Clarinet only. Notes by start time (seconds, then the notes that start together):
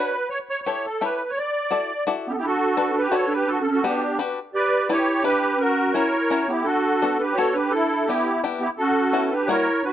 2.27 B3 C#4
2.34 B3
2.41 D4
2.93 D4
3.10 F#4
3.28 D4
3.47 D4
3.61 C#4
3.69 C#4
3.83 B3
4.55 G4
4.90 E4
5.24 D4
5.57 C#4
5.94 E4
6.49 B3
6.65 D4
7.19 D4
7.35 F#4
7.55 D4
7.72 D4
8.09 B3
8.60 B3
8.78 C#4
9.32 D4
9.50 E4
9.84 D4